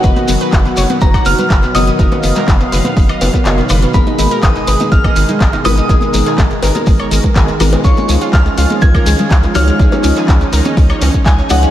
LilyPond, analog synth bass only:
\new Staff \with { instrumentName = "Analog synth bass" } { \clef bass \time 4/4 \key gis \dorian \tempo 4 = 123 fis,,8 fis,,8 fis,,8 fis,,8 fis,,8 fis,,8 fis,,8 fis,,8 | fis,,8 fis,,8 fis,,8 fis,,8 fis,,8 fis,,8 fis,,8 fis,,8 | gis,,8 gis,,8 gis,,8 gis,,8 gis,,8 gis,,8 gis,,8 gis,,8 | gis,,8 gis,,8 gis,,8 gis,,8 gis,,8 gis,,8 gis,,8 gis,,8 |
cis,8 cis,8 cis,8 cis,8 cis,8 cis,8 cis,8 cis,8 | cis,8 cis,8 cis,8 cis,8 cis,8 cis,8 cis,8 cis,8 | }